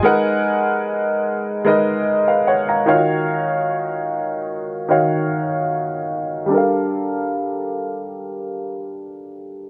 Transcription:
0.00 1.56 G#3 medium
0.00 1.56 D#4 medium
0.00 0.24 D#5 medium
0.00 0.23 G#5 medium
0.04 1.56 A#4 medium
0.04 1.57 B4 medium
0.04 1.57 F#5 medium
1.65 2.87 G#3 medium
1.65 2.85 D#4 medium
1.65 2.06 A#4 medium
1.65 2.06 B4 medium
1.65 2.07 D#5 medium
2.28 2.46 B4 soft
2.28 2.46 F5 medium
2.47 2.68 C#5 medium
2.47 2.67 F#5 medium
2.69 2.87 F5 soft
2.69 3.07 A#5 medium
2.86 4.39 D#3 medium
2.86 4.40 D#4 medium
2.86 2.94 F4 medium
2.86 4.40 C#5 medium
2.86 4.41 F5 medium
2.94 4.43 F#4 medium
4.89 6.42 D#3 medium
4.89 6.42 D#4 medium
4.89 6.43 F#4 medium
4.89 6.43 C#5 medium
4.89 6.43 F5 medium
6.46 9.70 G3 medium
6.46 9.70 D4 medium
6.52 9.70 A4 medium
6.52 9.70 A#4 medium
6.58 9.70 F5 medium

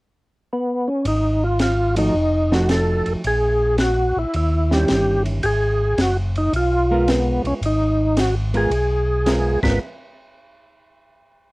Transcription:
0.53 0.89 B3 medium
0.88 1.06 C#4 medium
1.05 2.11 G#1 medium
1.05 1.44 D#4 medium
1.05 ride medium
1.44 1.61 F4 medium
1.59 1.95 F4 medium
1.59 snare medium
1.59 hi-hat pedal medium
1.59 ride medium
1.96 2.13 F3 medium
1.96 2.13 A3 medium
1.96 2.13 D#4 medium
1.96 2.54 D#4 medium
1.96 2.14 F#4 medium
1.96 ride medium
2.14 3.02 F1 medium
2.51 3.21 F3 medium
2.51 3.21 A3 medium
2.51 3.21 D#4 medium
2.51 2.69 F#4 medium
2.51 3.22 F#4 medium
2.51 snare medium
2.69 3.13 A4 medium
2.69 snare medium
2.69 hi-hat pedal medium
2.69 ride medium
3.06 3.15 F1 soft
3.06 ride soft
3.24 4.12 A#1 medium
3.24 3.77 G#4 medium
3.24 ride medium
3.78 4.18 F#4 medium
3.78 snare medium
3.78 hi-hat pedal medium
3.78 ride medium
4.17 4.25 A#1 soft
4.17 4.35 E4 medium
4.34 4.85 D#2 medium
4.34 4.73 E4 medium
4.34 ride soft
4.71 5.41 D#3 medium
4.71 5.41 G3 medium
4.71 5.41 C#4 medium
4.71 5.41 E4 medium
4.71 5.23 G4 medium
4.71 snare soft
4.88 5.40 G1 medium
4.88 snare medium
4.88 hi-hat pedal soft
4.88 ride medium
5.26 ride soft
5.43 5.94 G#1 medium
5.43 5.46 G4 medium
5.43 6.01 G#4 loud
5.43 ride medium
5.98 6.49 F#1 medium
5.98 6.17 F#4 medium
5.98 snare medium
5.98 hi-hat pedal medium
5.98 ride medium
6.35 6.53 D#4 medium
6.35 ride soft
6.52 7.40 B1 medium
6.52 7.11 F4 medium
6.52 ride medium
6.91 7.59 G#3 medium
6.91 7.59 B3 medium
6.91 7.59 F4 medium
6.91 7.59 A#4 medium
7.08 7.42 B3 medium
7.08 snare medium
7.08 hi-hat pedal medium
7.08 ride medium
7.44 7.53 B1 soft
7.44 7.54 C#4 medium
7.44 ride soft
7.61 8.66 G#1 medium
7.61 ride medium
7.66 8.20 D#4 medium
8.17 8.35 F#4 medium
8.17 snare medium
8.17 hi-hat pedal medium
8.17 ride medium
8.54 8.69 G#3 medium
8.54 8.69 B3 medium
8.54 8.70 F4 medium
8.54 9.60 G#4 medium
8.54 8.70 A#4 medium
8.54 ride soft
8.70 9.57 B1 medium
8.70 ride medium
9.26 9.58 G#3 medium
9.26 9.59 B3 medium
9.26 9.59 F4 medium
9.26 9.59 A#4 medium
9.26 snare medium
9.26 hi-hat pedal medium
9.26 ride medium
9.63 9.79 G#1 medium
9.63 9.78 G#3 medium
9.63 9.79 B3 medium
9.63 9.78 F4 medium
9.63 9.79 A#4 medium
9.63 9.79 B4 medium
9.63 kick medium
9.63 snare medium
9.63 crash medium

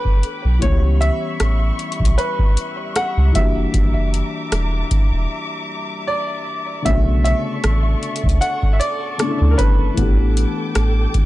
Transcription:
0.00 0.56 E3 medium
0.00 0.57 A3 medium
0.00 0.58 B3 medium
0.00 0.59 D4 medium
0.00 0.60 G4 medium
0.00 0.59 A4 medium
0.00 0.58 B4 medium
0.00 0.59 G5 medium
0.00 3.31 B5 medium
0.00 0.59 D6 medium
0.05 0.20 G1 medium
0.05 kick medium
0.23 closed hi-hat medium
0.45 0.59 B1 medium
0.59 1.11 C#2 loud
0.59 3.29 E3 medium
0.59 3.30 G3 medium
0.59 6.82 G3 medium
0.59 3.31 B3 medium
0.59 0.98 C#5 loud
0.59 6.82 E5 medium
0.59 3.32 C#6 medium
0.59 kick loud
0.59 closed hi-hat medium
0.65 3.32 C#4 medium
0.65 3.33 G4 medium
1.01 2.21 E5 loud
1.01 closed hi-hat medium
1.40 1.72 A1 medium
1.40 cross-stick loud
1.40 closed hi-hat medium
1.79 closed hi-hat soft
1.92 closed hi-hat medium
2.00 2.15 B1 medium
2.00 kick medium
2.05 closed hi-hat medium
2.18 2.98 B4 medium
2.18 closed hi-hat medium
2.39 kick medium
2.57 closed hi-hat medium
2.96 3.36 F#5 medium
2.96 cross-stick loud
2.96 closed hi-hat medium
3.18 3.32 C#2 medium
3.32 3.66 F#1 medium
3.32 6.41 E3 medium
3.32 6.42 G3 medium
3.32 6.43 A#3 medium
3.32 4.09 E5 medium
3.32 6.82 A#5 medium
3.32 6.82 D6 medium
3.32 kick medium
3.32 closed hi-hat medium
3.38 6.44 D4 medium
3.38 6.45 F#4 medium
3.74 4.22 F#1 loud
3.74 kick loud
3.74 closed hi-hat medium
4.14 closed hi-hat medium
4.52 4.83 E1 medium
4.52 cross-stick loud
4.52 closed hi-hat medium
4.91 kick medium
4.91 closed hi-hat medium
5.13 5.27 E1 medium
6.07 6.88 D5 medium
6.82 7.34 B1 loud
6.82 9.14 D3 medium
6.82 9.15 A3 medium
6.82 9.16 B3 medium
6.82 11.26 A4 medium
6.82 9.94 D5 medium
6.82 7.23 E5 medium
6.82 11.26 A5 medium
6.82 9.94 C#6 medium
6.82 kick loud
6.82 closed hi-hat medium
6.88 9.17 C#3 medium
6.88 9.18 F#4 medium
7.24 8.45 E5 loud
7.24 closed hi-hat medium
7.64 7.95 A1 medium
7.64 cross-stick loud
7.64 closed hi-hat medium
8.03 closed hi-hat soft
8.16 closed hi-hat medium
8.24 8.38 C#2 medium
8.24 kick medium
8.29 closed hi-hat medium
8.41 8.75 F#5 loud
8.41 closed hi-hat medium
8.63 kick medium
8.73 8.80 E5 medium
8.80 9.54 D5 loud
8.80 closed hi-hat medium
9.18 9.98 C#3 soft
9.18 9.97 D3 soft
9.18 9.94 A3 soft
9.18 9.96 B3 soft
9.18 9.28 D4 soft
9.18 cross-stick loud
9.18 closed hi-hat medium
9.28 10.02 E4 soft
9.41 9.55 D2 medium
9.51 9.58 A#4 medium
9.58 9.90 G1 medium
9.58 10.71 B4 medium
9.58 kick medium
9.58 closed hi-hat medium
9.94 11.26 E3 medium
9.94 11.26 A3 medium
9.94 11.26 B3 medium
9.94 11.26 G5 medium
9.94 11.26 D6 medium
9.94 kick loud
9.94 closed hi-hat medium
9.98 10.46 A1 loud
9.98 11.26 D4 medium
9.98 11.26 G4 medium
10.37 closed hi-hat medium
10.75 11.07 A1 medium
10.75 cross-stick loud
10.75 closed hi-hat medium
11.14 kick medium
11.14 closed hi-hat soft

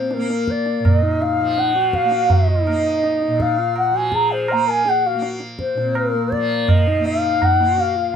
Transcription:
0.00 0.79 A#2 soft
0.00 1.41 F3 medium
0.00 0.17 A#3 medium
0.00 0.32 C4 soft
0.00 0.15 C5 medium
0.11 0.52 A#4 medium
0.11 tabla te medium
0.17 2.04 A#3 medium
0.30 1.04 A#3 medium
0.30 tabla te medium
0.48 0.88 D5 medium
0.48 tabla ke medium
0.66 tabla te soft
0.80 3.27 A#2 medium
0.85 1.23 D#5 medium
0.85 tabla na medium
0.85 tabla ge medium
1.03 1.75 D#4 medium
1.22 1.60 F5 medium
1.22 tabla te medium
1.41 3.91 F3 medium
1.58 1.97 F#5 medium
1.58 tabla te medium
1.75 2.51 F#4 medium
1.75 tabla te medium
1.93 2.34 F5 medium
1.93 tabla ke medium
2.04 2.67 A#3 soft
2.11 tabla te medium
2.30 3.43 D#5 medium
2.30 tabla tin medium
2.30 tabla ge medium
2.49 3.61 D#4 medium
2.67 4.52 A#3 medium
2.67 tabla na medium
3.04 tabla te medium
3.22 tabla te medium
3.28 5.74 A#2 medium
3.40 3.77 F5 medium
3.40 tabla ke medium
3.59 3.96 F4 medium
3.59 tabla te soft
3.76 3.98 F#5 medium
3.76 tabla na medium
3.91 6.37 F3 medium
3.91 4.14 F#4 medium
3.96 4.16 G#5 medium
4.12 4.51 G#4 medium
4.12 4.33 A#5 medium
4.12 tabla ke medium
4.32 4.53 C5 medium
4.48 4.66 C5 medium
4.48 4.71 A#5 medium
4.48 tabla na medium
4.52 5.14 A#3 soft
4.67 4.84 A#4 medium
4.67 4.90 G#5 medium
4.85 5.07 G#4 medium
4.85 5.08 F#5 medium
4.85 tabla te medium
5.06 5.42 F#4 medium
5.06 5.24 F5 medium
5.14 6.99 A#3 medium
5.22 tabla te medium
5.40 tabla te medium
5.59 5.98 C5 medium
5.59 tabla ke medium
5.75 8.16 A#2 soft
5.75 6.16 C4 soft
5.75 tabla te medium
5.95 6.34 A#4 medium
5.95 tabla na medium
6.15 6.89 A#3 medium
6.32 6.71 D5 medium
6.32 tabla ke medium
6.37 8.16 F3 medium
6.68 7.07 D#5 medium
6.68 tabla na medium
6.68 tabla ge medium
6.88 7.63 D#4 medium
6.99 7.60 A#3 medium
7.05 7.45 F5 medium
7.05 tabla te medium
7.42 7.82 F#5 medium
7.42 tabla na medium
7.42 tabla ge medium
7.60 8.16 A#3 soft
7.60 7.98 F#4 medium
7.78 8.16 F5 medium
7.78 tabla te medium
7.96 8.16 F4 medium

